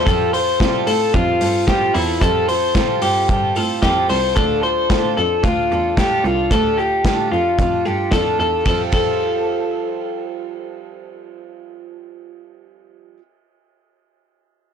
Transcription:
0.06 cello F2, twelve-string acoustic guitar F3 G3 C4 F4, clean electric guitar A4, kick, closed hi-hat
0.10 twelve-string acoustic guitar A4
0.33 twelve-string acoustic guitar F4 A4, clean electric guitar C5, open hi-hat
0.38 twelve-string acoustic guitar C4
0.60 cello C3, twelve-string acoustic guitar F3 G3 C4 F4, kick, snare, closed hi-hat
0.64 twelve-string acoustic guitar A4
0.87 cello A2, twelve-string acoustic guitar C4 F4 A4, open hi-hat
1.14 cello F2, twelve-string acoustic guitar G3 C4 F4 A4, kick, closed hi-hat
1.41 cello G2, twelve-string acoustic guitar C4 F4 A4, open hi-hat
1.67 twelve-string acoustic guitar F3 G3 C4 F4 A4, clean electric guitar G4, kick, snare, closed hi-hat
1.94 cello E2, twelve-string acoustic guitar C4 F4 A4, clean electric guitar E4, open hi-hat
2.21 cello F2, twelve-string acoustic guitar F3 G3 C4 F4 A4, kick, closed hi-hat
2.48 twelve-string acoustic guitar C4 F4 A4, clean electric guitar C5, open hi-hat
2.75 cello C3, twelve-string acoustic guitar F3 G3 C4 F4 A4, kick, snare, closed hi-hat
3.02 cello G2, twelve-string acoustic guitar C4 F4 A4, clean electric guitar G4, open hi-hat
3.29 cello G2, twelve-string acoustic guitar G3 C4 F4 A4, kick, closed hi-hat
3.55 cello A2, twelve-string acoustic guitar C4 F4 A4, open hi-hat
3.82 cello F2, twelve-string acoustic guitar F3 G3 C4 F4 A4, clean electric guitar G4, kick, snare, closed hi-hat
4.09 cello C2, twelve-string acoustic guitar C4 F4 A4, clean electric guitar C5, open hi-hat
4.36 cello D2, twelve-string acoustic guitar D3 A3 D4 F4 A4, kick, closed hi-hat
4.63 twelve-string acoustic guitar D4 F4 A4, clean electric guitar C5
4.90 cello A2, twelve-string acoustic guitar D3 A3 D4 F4 A4, kick, snare, closed hi-hat
5.17 cello F2, twelve-string acoustic guitar D4 F4 A4
5.43 cello D2, twelve-string acoustic guitar A3 D4 F4 A4, kick, closed hi-hat
5.72 cello E2, twelve-string acoustic guitar D4 F4 A4
5.97 twelve-string acoustic guitar D3 A3 D4 F4 A4, clean electric guitar G4, kick, snare, closed hi-hat
6.24 cello C2, twelve-string acoustic guitar D4 F4 A4
6.51 cello D2, twelve-string acoustic guitar D3 A3 D4 F4 A4, kick, closed hi-hat
6.77 twelve-string acoustic guitar F4 A4, clean electric guitar G4
6.81 twelve-string acoustic guitar D4
7.05 cello A2, twelve-string acoustic guitar D3 A3 D4 F4 A4, kick, snare, closed hi-hat
7.32 cello F2, twelve-string acoustic guitar F4 A4
7.36 twelve-string acoustic guitar D4
7.59 cello F2, twelve-string acoustic guitar A3 D4 F4 A4, kick, closed hi-hat
7.85 cello G2, twelve-string acoustic guitar D4 F4 A4, clean electric guitar G4
8.11 cello F2, twelve-string acoustic guitar D3 A3 D4 F4 A4, kick, snare, closed hi-hat
8.39 cello E2, twelve-string acoustic guitar D4 F4 A4
8.66 cello F2, twelve-string acoustic guitar F3 G3 C4, clean electric guitar A4, kick, ride
8.70 twelve-string acoustic guitar F4 A4
8.92 cello F2, twelve-string acoustic guitar F3 G3 C4, kick, ride
8.96 twelve-string acoustic guitar F4 A4

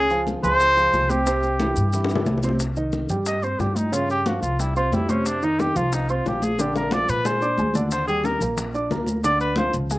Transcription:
Already playing: upright bass C#2, trumpet G#4, celesta G#5
0.10 grand piano F3 F4 G#4, high bongo, high conga, maracas
0.27 high bongo, high conga, maracas
0.43 upright bass C#2, grand piano F3 F4 G#4, trumpet C5, celesta C6, high bongo, high conga, low conga, maracas
0.60 high bongo, high conga, maracas
0.76 grand piano F3 F4 G#4, high conga, maracas
0.93 upright bass C2, high bongo, low bongo, high conga, maracas
1.09 grand piano C3 C4 C5, trumpet G4, celesta G5, high bongo, high conga, maracas
1.26 grand piano C3 C4 C5, high bongo, high conga, maracas
1.43 high bongo, high conga, maracas
1.60 grand piano E3 E4 G4, high bongo, high conga, maracas
1.76 upright bass G2, high bongo, high conga, maracas
1.93 grand piano E3 E4 G4, high bongo, high conga, maracas
2.04 high bongo
2.09 grand piano E3 E4 G4, high conga, maracas
2.15 low bongo
2.26 upright bass C2, low bongo, high conga, maracas
2.38 low bongo
2.43 grand piano C3 C4 C5, high conga, maracas
2.49 low bongo
2.59 high bongo, maracas
2.76 grand piano D#3 D#4 D#5, high bongo, high conga, maracas
2.92 high bongo, high conga, maracas
3.09 upright bass G2, grand piano G3 G4 G5, high bongo, high conga, low conga, maracas
3.26 trumpet D#5, high bongo, high conga, maracas
3.43 grand piano C4 C5 C6, trumpet C5, high conga, maracas
3.59 upright bass G2, grand piano G3 G4 G5, trumpet G4, high bongo, low bongo, high conga, maracas
3.76 trumpet D#4, high bongo, high conga, maracas
3.92 grand piano C#3 C#4 C#5, trumpet F4, high bongo, high conga, maracas
4.10 trumpet G4, high bongo, high conga, maracas
4.26 grand piano F3 F4 F5, trumpet F#4, high bongo, high conga, maracas
4.42 upright bass C2, trumpet F4, high bongo, high conga, maracas
4.59 grand piano G3 G4 G5, trumpet E4, high bongo, high conga, maracas
4.76 grand piano C4 C5 C6, trumpet F4, high conga, maracas
4.92 upright bass F2, grand piano G3 G4 G5, trumpet E4, high bongo, low bongo, high conga, maracas
5.09 grand piano C3 C4 C5, trumpet C#4, high bongo, high conga, maracas
5.26 trumpet D4, high bongo, maracas
5.42 grand piano D#3 D#4 D#5, trumpet D#4, high bongo, high conga, maracas
5.59 trumpet G4, high bongo, high conga, maracas
5.76 upright bass C2, grand piano F3 F4 F5, trumpet F4, high bongo, high conga, low conga, maracas
5.92 trumpet D#4, high bongo, high conga, maracas
6.09 grand piano C4 C5 C6, trumpet F4, high conga, maracas
6.26 upright bass A#1, grand piano F3 F4 F5, trumpet G4, high bongo, low bongo, high conga, maracas
6.42 trumpet G#4, high bongo, high conga, maracas
6.59 grand piano D3 D4 D5, trumpet G4, high bongo, high conga, maracas
6.75 trumpet A#4, high bongo, high conga, maracas
6.91 grand piano F3 F4 F5, trumpet D5, high bongo, high conga, maracas
7.08 upright bass A#2, trumpet B4, high conga, maracas
7.25 grand piano G#3 G#4 G#5, trumpet C5, low bongo, high conga, maracas
7.41 grand piano D4 D5 D6, high conga, maracas
7.58 upright bass D#2, grand piano G#3 G#4 G#5, high conga, maracas
7.74 grand piano D3 D4 D5, low bongo, high conga, maracas
7.91 trumpet C5, high bongo, high conga, maracas
8.07 grand piano G3 G4 G5, trumpet G#4, high bongo, high conga, maracas
8.24 trumpet A#4, high bongo, high conga, maracas
8.40 upright bass A#1, grand piano A#3 A#4 A#5, high bongo, high conga, low conga, maracas
8.57 high bongo, high conga, low conga, maracas
8.73 grand piano D4 D5 D6, high conga, maracas
8.90 upright bass D2, grand piano A#3 A#4 A#5, high bongo, low bongo, high conga, maracas
9.06 high bongo, high conga, maracas
9.23 grand piano D3 D4 D5, trumpet D5, high bongo, high conga, maracas
9.40 trumpet B4, high bongo, high conga, maracas
9.56 grand piano F3 F4 F5, trumpet C5, high bongo, high conga, maracas
9.73 upright bass C#2, high bongo, high conga, maracas
9.90 grand piano G#3 G#4 G#5, high bongo, high conga, maracas

